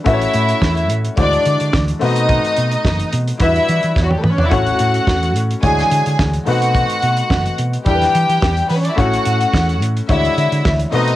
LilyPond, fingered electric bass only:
\new Staff \with { instrumentName = "Fingered electric bass" } { \clef bass \time 4/4 \key a \mixolydian \tempo 4 = 108 a,,8 a,8 e,8 a,8 d,8 d16 d16 d,8 b,8~ | b,8 b,8 fis,,8 b,8 e,8 e16 e16 e,8 e8 | a,,8 a,8 e,8 a,8 d,8 d16 d16 d,8 b,8~ | b,8 b,8 fis,,8 b,8 e,8 e16 e16 e,8 e8 |
a,,8 a,8 e,8 a,8 d,8 d16 d16 d,8 b,8 | }